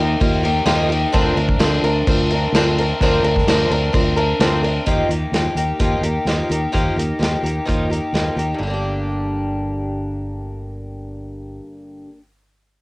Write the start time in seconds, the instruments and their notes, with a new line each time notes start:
Already playing: fingered electric bass D#2, twelve-string acoustic guitar G4
0.00 twelve-string acoustic guitar A#3 D#4
0.20 fingered electric bass D#2, twelve-string acoustic guitar F3 A#3 D#4 G4, kick, crash
0.43 twelve-string acoustic guitar A#3 D#4 G4, crash
0.65 fingered electric bass D#2, twelve-string acoustic guitar D#3 F3 A#3 D#4 G4, snare, crash
0.88 twelve-string acoustic guitar A#3 D#4 G4, crash
1.12 fingered electric bass D2, twelve-string acoustic guitar D3 F3 C4 D4 A#4, kick, crash
1.36 fingered electric bass D2, twelve-string acoustic guitar C4 D4 A#4, crash
1.49 kick
1.59 fingered electric bass D2, twelve-string acoustic guitar D3 F3 C4 D4 A#4, snare, crash
1.82 fingered electric bass D2, twelve-string acoustic guitar C4 D4 A#4, crash
2.07 fingered electric bass D2, twelve-string acoustic guitar F3 C4 D4 A#4, kick, crash
2.30 twelve-string acoustic guitar C4 D4 A#4, crash
2.52 fingered electric bass D2, twelve-string acoustic guitar D3 F3 C4 D4 A#4, snare, crash
2.78 twelve-string acoustic guitar C4 D4 A#4, crash
3.00 fingered electric bass D2, twelve-string acoustic guitar D3 F3 C4 D4 A#4, kick, crash
3.23 fingered electric bass D2, twelve-string acoustic guitar C4 D4 A#4, crash
3.36 kick, snare
3.47 fingered electric bass D2, twelve-string acoustic guitar D3 F3 C4 D4 A#4, snare, crash
3.70 fingered electric bass D2, twelve-string acoustic guitar C4 D4 A#4, crash
3.93 fingered electric bass D2, twelve-string acoustic guitar F3 C4 D4 A#4, kick, crash
4.16 twelve-string acoustic guitar C4 D4 A#4, crash
4.39 fingered electric bass D2, twelve-string acoustic guitar D3 F3 C4 D4 A#4, snare, crash
4.63 twelve-string acoustic guitar C4 D4 A#4, crash
4.86 fingered electric bass D#2, twelve-string acoustic guitar D#3 F3 A#3 D#4 G4, kick, closed hi-hat
5.09 fingered electric bass D#2, twelve-string acoustic guitar A#3 D#4 G4, closed hi-hat
5.32 fingered electric bass D#2, twelve-string acoustic guitar F3 A#3 D#4 G4, snare, closed hi-hat
5.55 fingered electric bass D#2, twelve-string acoustic guitar A#3 D#4 G4, closed hi-hat
5.79 fingered electric bass D#2, twelve-string acoustic guitar D#3 F3 A#3 D#4 G4, kick, closed hi-hat
6.01 fingered electric bass D#2, twelve-string acoustic guitar A#3 D#4 G4, closed hi-hat
6.25 fingered electric bass D#2, twelve-string acoustic guitar F3 A#3 D#4 G4, snare, closed hi-hat
6.49 fingered electric bass D#2, twelve-string acoustic guitar A#3 D#4 G4, closed hi-hat
6.72 fingered electric bass D#2, twelve-string acoustic guitar D#3 F3 A#3 D#4 G4, kick, closed hi-hat
6.96 fingered electric bass D#2, twelve-string acoustic guitar A#3 D#4 G4, closed hi-hat
7.19 fingered electric bass D#2, twelve-string acoustic guitar F3 A#3 D#4 G4, closed hi-hat
7.23 snare
7.43 fingered electric bass D#2, twelve-string acoustic guitar A#3 D#4 G4, closed hi-hat
7.66 fingered electric bass D#2, twelve-string acoustic guitar D#3 F3 A#3 D#4 G4, kick, closed hi-hat
7.90 twelve-string acoustic guitar A#3 D#4 G4, closed hi-hat
8.13 fingered electric bass D#2, twelve-string acoustic guitar F3 A#3 D#4 G4, snare, closed hi-hat
8.36 fingered electric bass D#2, twelve-string acoustic guitar A#3 D#4 G4, closed hi-hat
8.54 twelve-string acoustic guitar G2
8.59 fingered electric bass G1, twelve-string acoustic guitar D3
8.63 twelve-string acoustic guitar G3
8.67 twelve-string acoustic guitar A#3 D4
8.74 twelve-string acoustic guitar G4